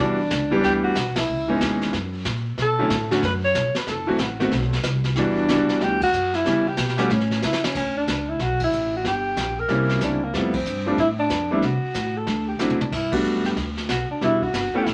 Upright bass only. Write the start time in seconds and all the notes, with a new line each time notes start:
0.00 E2
0.31 C#2
0.63 D2
0.95 B1
1.29 C#2
1.61 D#2
1.93 F#2
2.25 A#2
2.58 B2
2.90 A2
3.22 F#2
3.55 B1
3.74 muted upright bass stroke
3.87 F#1
4.19 A1
4.51 B1
4.84 C2
5.16 E2
5.48 C#2
5.69 muted upright bass stroke
5.81 D2
6.13 F#2
6.45 C#3
6.77 B2
7.10 A2
7.43 C#3
7.75 D2
8.07 C#2
8.39 B1
8.71 A1
9.04 G1
9.37 A#1
9.69 C2
10.01 C#2
10.33 F2
10.66 G2
10.97 A2
11.30 F2
11.62 C3
11.83 muted upright bass stroke
11.94 A2
12.27 D2
12.60 E2
12.80 muted upright bass stroke
12.92 G2
13.24 F#2
13.56 D2
13.89 B1
14.10 muted upright bass stroke
14.21 E1
14.54 G1
14.75 muted upright bass stroke
14.86 A1